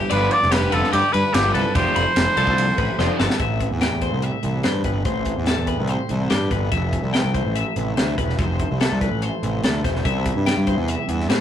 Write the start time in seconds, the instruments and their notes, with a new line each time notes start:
Already playing: clean electric guitar G2 G3 D4 F4 G4 B4
0.09 picked electric bass G1, overdriven electric guitar D3 F3 B3 F4, clean electric guitar F4 D5, trumpet B4, ride
0.31 clean electric guitar B4, trumpet D5, ride
0.42 picked electric bass F1, snare
0.51 clean electric guitar D4 G4, trumpet B4, snare, ride
0.72 picked electric bass F1, overdriven electric guitar D3 F3 B3 F4, clean electric guitar D3 B4, trumpet A4, ride
0.84 snare
0.92 picked electric bass G2, clean electric guitar F4 D5, trumpet G4, ride
1.13 picked electric bass G2, clean electric guitar D4 B4, trumpet B4, ride
1.33 picked electric bass G1, overdriven electric guitar D3 F3 B3 F4, clean electric guitar F4, trumpet G4, snare, ride
1.54 picked electric bass C2, clean electric guitar G2 A4, trumpet B4, ride
1.75 picked electric bass F1, overdriven electric guitar F3 A3 D4 F4, clean electric guitar F3 G4, trumpet C5, kick, ride
1.96 picked electric bass F1, clean electric guitar A4 B5, ride
2.16 picked electric bass F1, clean electric guitar A4, snare, ride
2.37 picked electric bass C2, overdriven electric guitar F3 A3 D4 F4, clean electric guitar C4 A4, ride
2.47 kick
2.58 clean electric guitar F3, ride
2.78 picked electric bass A1, clean electric guitar A4 B4, kick, ride
2.99 picked electric bass F1, overdriven electric guitar F3 A3 D4 F4, clean electric guitar C4 C5, snare
3.19 picked electric bass G1, clean electric guitar A4, snare
3.30 snare
3.38 picked electric bass A1, clean electric guitar A2 E5, kick, closed hi-hat
3.60 clean electric guitar C4, kick, closed hi-hat
3.71 picked electric bass E2
3.81 clean electric guitar A3 E4 G5, snare, closed hi-hat
3.92 picked electric bass E2, clean electric guitar G4
4.01 clean electric guitar C4 C5, kick, closed hi-hat
4.13 picked electric bass C2
4.22 clean electric guitar G4 E5, closed hi-hat
4.43 picked electric bass C2, clean electric guitar E3, closed hi-hat
4.63 picked electric bass G2, clean electric guitar B4 C5, snare, closed hi-hat
4.84 picked electric bass G1, clean electric guitar C4 B4, kick, closed hi-hat
5.05 picked electric bass A1, clean electric guitar A2 C5, kick, closed hi-hat
5.25 clean electric guitar C4, kick, closed hi-hat
5.37 picked electric bass E2
5.46 clean electric guitar A3 G4 A4, snare, closed hi-hat
5.58 picked electric bass E2
5.67 clean electric guitar C4 B4, kick, closed hi-hat
5.79 picked electric bass C2
5.88 clean electric guitar G4 C5, closed hi-hat
6.09 picked electric bass C2, clean electric guitar E3, closed hi-hat
6.30 picked electric bass G2, clean electric guitar G4 B4, snare, closed hi-hat
6.51 picked electric bass G1, clean electric guitar C4 B4, kick, closed hi-hat
6.72 picked electric bass F1, clean electric guitar F3 E5, kick, closed hi-hat
6.93 clean electric guitar E4, kick, closed hi-hat
7.03 picked electric bass C2
7.13 clean electric guitar A3 A4 G5, snare, closed hi-hat
7.24 picked electric bass C2
7.34 clean electric guitar E4 C5, kick, closed hi-hat
7.45 picked electric bass A1
7.56 clean electric guitar A4 E5, closed hi-hat
7.76 picked electric bass A1, clean electric guitar C3, closed hi-hat
7.96 picked electric bass D2, clean electric guitar C5, snare, closed hi-hat
8.18 picked electric bass E1, clean electric guitar E4 B4, kick, closed hi-hat
8.30 snare
8.38 picked electric bass F1, clean electric guitar F3 C5, kick, closed hi-hat
8.59 clean electric guitar E4, kick, closed hi-hat
8.71 picked electric bass C2
8.81 clean electric guitar A3 A4, snare, closed hi-hat
8.91 picked electric bass C2
9.01 clean electric guitar E4 B4, kick, closed hi-hat
9.12 picked electric bass A1
9.22 clean electric guitar A4 C5, closed hi-hat
9.43 picked electric bass A1, clean electric guitar C3, closed hi-hat
9.64 picked electric bass D2, clean electric guitar A4 C5, snare, closed hi-hat
9.84 picked electric bass E1, clean electric guitar E4 C5, kick, snare, closed hi-hat
9.96 snare
10.05 picked electric bass C2, clean electric guitar C3 E5, kick, closed hi-hat
10.26 clean electric guitar E4, kick, closed hi-hat
10.36 picked electric bass G2
10.46 clean electric guitar G3 G4 G5, snare, closed hi-hat
10.57 picked electric bass G2
10.67 clean electric guitar E4 C5, kick, closed hi-hat
10.77 picked electric bass E2
10.88 clean electric guitar E4 E5, closed hi-hat
11.02 clean electric guitar G4
11.09 picked electric bass E2, closed hi-hat
11.13 clean electric guitar G2
11.20 snare
11.29 picked electric bass A2, clean electric guitar B4 C5, snare, closed hi-hat